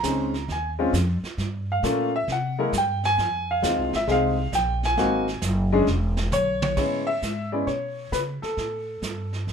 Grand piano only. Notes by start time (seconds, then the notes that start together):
Already playing: A#5
0.04 G#3 C4 C#4 D#4
0.52 G#5
0.79 G#3 C4 C#4 F4
1.72 F5
1.84 A3 A#3 C#4 F4
2.16 E5
2.32 F#5
2.59 G#3 A#3 E4 A#4
2.78 G5
3.05 G#5
3.51 F5
3.62 G#3 C4 D#4 F4
3.96 E5
4.08 G#3 C4 D#4 G#4 F5
4.55 G5
4.85 G#5
4.98 A#3 C4 D#4 F#4
5.73 G#3 C#4 D4 G#4
6.33 C#5
6.63 C#5
6.77 G#3 B3 C#4 E4 C#5
7.07 E5
7.52 G#3 B3 C#4 E4 D5
7.67 C#5
8.12 B4
8.42 A4